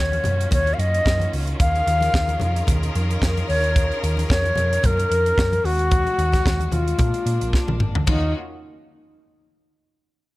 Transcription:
Already playing: D#2 D#3 A#3 C#4 F4 F#4 C#5
0.12 closed hi-hat, muted conga, high conga
0.24 F#2, closed hi-hat, high conga, low conga
0.41 closed hi-hat
0.51 D#2 C#5, kick, closed hi-hat, muted conga, low conga
0.66 closed hi-hat, muted conga
0.74 F5
0.78 F#2 D#5, closed hi-hat
0.94 closed hi-hat
1.05 F#2, kick, snare, muted conga
1.20 closed hi-hat, high conga
1.33 C#2, open hi-hat
1.47 closed hi-hat
1.59 D#2 G#4 A#4 F5, kick, closed hi-hat
1.75 closed hi-hat, muted conga
1.87 D#2, closed hi-hat
2.01 closed hi-hat, high conga
2.12 D#2, kick, snare, muted conga
2.28 closed hi-hat, high conga
2.40 F2, closed hi-hat, high conga, low conga
2.56 closed hi-hat
2.67 D#2, kick, closed hi-hat, low conga
2.82 closed hi-hat, muted conga
2.95 F2, closed hi-hat
3.10 closed hi-hat
3.21 F2, kick, snare, muted conga
3.37 closed hi-hat, high conga
3.48 D#2 C#5, open hi-hat
3.64 closed hi-hat
3.76 kick, closed hi-hat
3.92 closed hi-hat
4.03 D#2, closed hi-hat
4.17 closed hi-hat, high conga
4.29 F2 C#5, kick, snare, muted conga
4.44 closed hi-hat, high conga
4.55 F2, closed hi-hat, high conga, low conga
4.73 closed hi-hat
4.83 F#2 A#4, kick, closed hi-hat, low conga
4.97 closed hi-hat, muted conga
5.11 F2, closed hi-hat
5.26 closed hi-hat
5.38 F#2, kick, snare
5.52 closed hi-hat, high conga
5.64 D#2 G#3 F#4, open hi-hat
5.79 closed hi-hat
5.91 kick, closed hi-hat, muted conga, low conga
6.06 closed hi-hat, high conga
6.18 D#2, closed hi-hat
6.33 kick, snare, closed hi-hat, high conga
6.46 D#2, kick, snare
6.60 closed hi-hat, high conga
6.72 D#2 F4, closed hi-hat, high conga, low conga
6.88 closed hi-hat
6.98 A#2 A#3 D4, kick, closed hi-hat, muted conga, low conga
7.14 closed hi-hat, muted conga
7.26 A#2, closed hi-hat
7.41 A#1, closed hi-hat
7.53 kick, snare, muted conga
7.68 A#1, high tom, muted conga, high conga
7.80 G#1, mid tom
7.95 D2, floor tom
8.07 D#2 D#3 A#3 C#4 D#4 F4 F#4, kick, floor tom, ride bell, high conga

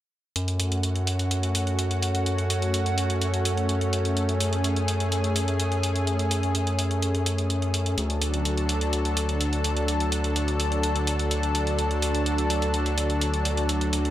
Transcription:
0.36 F#2 A3 C#4 F#4, closed hi-hat
0.48 closed hi-hat
0.60 open hi-hat
0.72 closed hi-hat
0.83 closed hi-hat
0.96 closed hi-hat
1.07 open hi-hat
1.19 closed hi-hat
1.31 closed hi-hat
1.43 closed hi-hat
1.55 open hi-hat
1.67 closed hi-hat
1.79 closed hi-hat
1.91 closed hi-hat
2.02 open hi-hat
2.15 closed hi-hat
2.26 closed hi-hat
2.38 closed hi-hat
2.50 open hi-hat
2.62 closed hi-hat
2.74 closed hi-hat
2.86 closed hi-hat
2.98 open hi-hat
3.10 closed hi-hat
3.21 closed hi-hat
3.34 closed hi-hat
3.45 open hi-hat
3.57 closed hi-hat
3.69 closed hi-hat
3.81 closed hi-hat
3.93 open hi-hat
4.05 closed hi-hat
4.17 G#4, closed hi-hat
4.29 closed hi-hat
4.40 open hi-hat
4.53 closed hi-hat
4.64 closed hi-hat
4.76 closed hi-hat
4.88 open hi-hat
5.00 closed hi-hat
5.12 closed hi-hat
5.24 closed hi-hat
5.36 open hi-hat
5.48 closed hi-hat
5.60 closed hi-hat
5.72 closed hi-hat
5.83 open hi-hat
5.96 closed hi-hat
6.07 closed hi-hat
6.19 closed hi-hat
6.31 open hi-hat
6.43 closed hi-hat
6.55 closed hi-hat
6.67 closed hi-hat
6.79 open hi-hat
6.91 closed hi-hat
7.02 closed hi-hat
7.15 closed hi-hat
7.26 open hi-hat
7.38 closed hi-hat
7.50 closed hi-hat
7.62 closed hi-hat
7.74 open hi-hat
7.86 closed hi-hat
7.98 D2 D3 F#3 D4 A4, closed hi-hat
8.10 closed hi-hat
8.22 open hi-hat
8.34 closed hi-hat
8.45 closed hi-hat
8.57 closed hi-hat
8.69 open hi-hat
8.81 closed hi-hat
8.93 closed hi-hat
9.05 closed hi-hat
9.17 open hi-hat
9.29 closed hi-hat
9.41 closed hi-hat
9.53 closed hi-hat
9.64 open hi-hat
9.77 closed hi-hat
9.88 closed hi-hat
10.00 closed hi-hat
10.12 open hi-hat
10.24 closed hi-hat
10.36 closed hi-hat
10.48 closed hi-hat
10.60 open hi-hat
10.72 closed hi-hat
10.83 closed hi-hat
10.96 closed hi-hat
11.07 open hi-hat
11.19 closed hi-hat
11.31 closed hi-hat
11.43 closed hi-hat
11.55 open hi-hat
11.67 closed hi-hat
11.79 closed hi-hat
11.91 closed hi-hat
12.02 open hi-hat
12.15 closed hi-hat
12.26 closed hi-hat
12.38 closed hi-hat
12.50 open hi-hat
12.62 closed hi-hat
12.74 closed hi-hat
12.86 closed hi-hat
12.98 open hi-hat
13.10 closed hi-hat
13.21 closed hi-hat
13.34 closed hi-hat
13.45 open hi-hat
13.57 closed hi-hat
13.69 closed hi-hat
13.81 closed hi-hat
13.93 open hi-hat
14.05 closed hi-hat

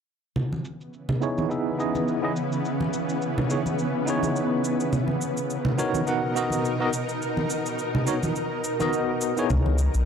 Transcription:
0.36 C#3 E3 B3, low conga, cabasa
0.53 high conga
0.65 cabasa
0.81 cabasa
0.93 cabasa
1.09 low conga
1.21 B3 D#4 E4 G#4 C#5, cabasa
1.38 high conga, cabasa
1.49 B3 D#4 E4 G#4 E5, cabasa
1.78 B3 D#4 E4 G#4 D#5, cabasa
1.95 high conga, cabasa
2.08 cabasa
2.22 B3 D#4 E4 G#4 D#5
2.36 cabasa
2.52 cabasa
2.65 cabasa
2.81 high conga
2.93 cabasa
3.09 cabasa
3.22 cabasa
3.38 low conga
3.49 B3 D#4 E4 G#4 C#5, cabasa
3.66 high conga, cabasa
3.79 cabasa
4.05 B3 D#4 E4 G#4, cabasa
4.10 C#5
4.23 high conga, cabasa
4.36 cabasa
4.64 cabasa
4.80 cabasa
4.92 B2 D#4 A#4, low conga, cabasa
5.08 high conga
5.21 cabasa
5.37 cabasa
5.50 cabasa
5.65 low conga
5.77 B3 D#4 F#4 A#4 C#5, cabasa
5.94 high conga, cabasa
6.07 B3 D#4 F#4 A#4 F#5, cabasa
6.35 B3 D#4 F#4 A#4 D#5, cabasa
6.50 high conga, cabasa
6.65 cabasa
6.80 B3 D#4 F#4 A#4 D#5
6.93 cabasa
7.09 cabasa
7.22 cabasa
7.37 high conga
7.50 cabasa
7.66 cabasa
7.79 cabasa
7.95 low conga
8.06 B3 D#4 F#4 A#4 C#5, cabasa
8.23 high conga, cabasa
8.36 cabasa
8.64 cabasa
8.79 B3 D#4 F#4 A#4 D#5, high conga, cabasa
8.93 cabasa
9.21 cabasa
9.37 B3 D#4 E4 G#4 C#5, cabasa
9.50 C#2 C#3 E3 B3, kick, low conga, cabasa
9.66 high conga
9.78 cabasa
9.94 B1, cabasa

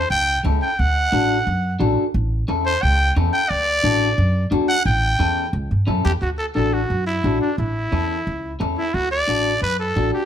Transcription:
0.10 C#2 G5
0.44 C#2 C#4 E4 A4
0.62 G5
0.79 D2 F#5
1.12 A1 D4 F#4 A4
1.47 F#2
1.80 A1 D4 F#4 A4
2.14 A1
2.48 E2 C#4 E4 A4
2.66 C5
2.82 C#2 G5
3.16 E2 C#4 E4 A4
3.33 G5
3.49 D2 D5
3.83 A1 D4 F#4 A4
4.18 F#2
4.51 E2 D4 F#4 A4
4.68 F#5
4.85 A1 G5
5.19 E2 C#4 E4 A4
5.53 C#2
5.71 G2
5.87 F#2 C#4 E4 A4
6.05 E2 G4
6.22 D2 F#4
6.38 A4
6.55 A1 D4 F#4 A4
6.73 F#4
6.90 F#2
7.07 E4
7.24 A1 D4 F#4 A4
7.41 D4
7.58 A1 E4
7.92 E2 C#4 E4 A4
8.27 C#2
8.60 E2 C#4 E4 A4
8.78 E4
8.94 D2 F#4
9.11 D5
9.28 A1 D4 F#4 A4
9.62 F#2 B4
9.79 A4
9.96 A1 D4 F#4 A4
10.14 G4

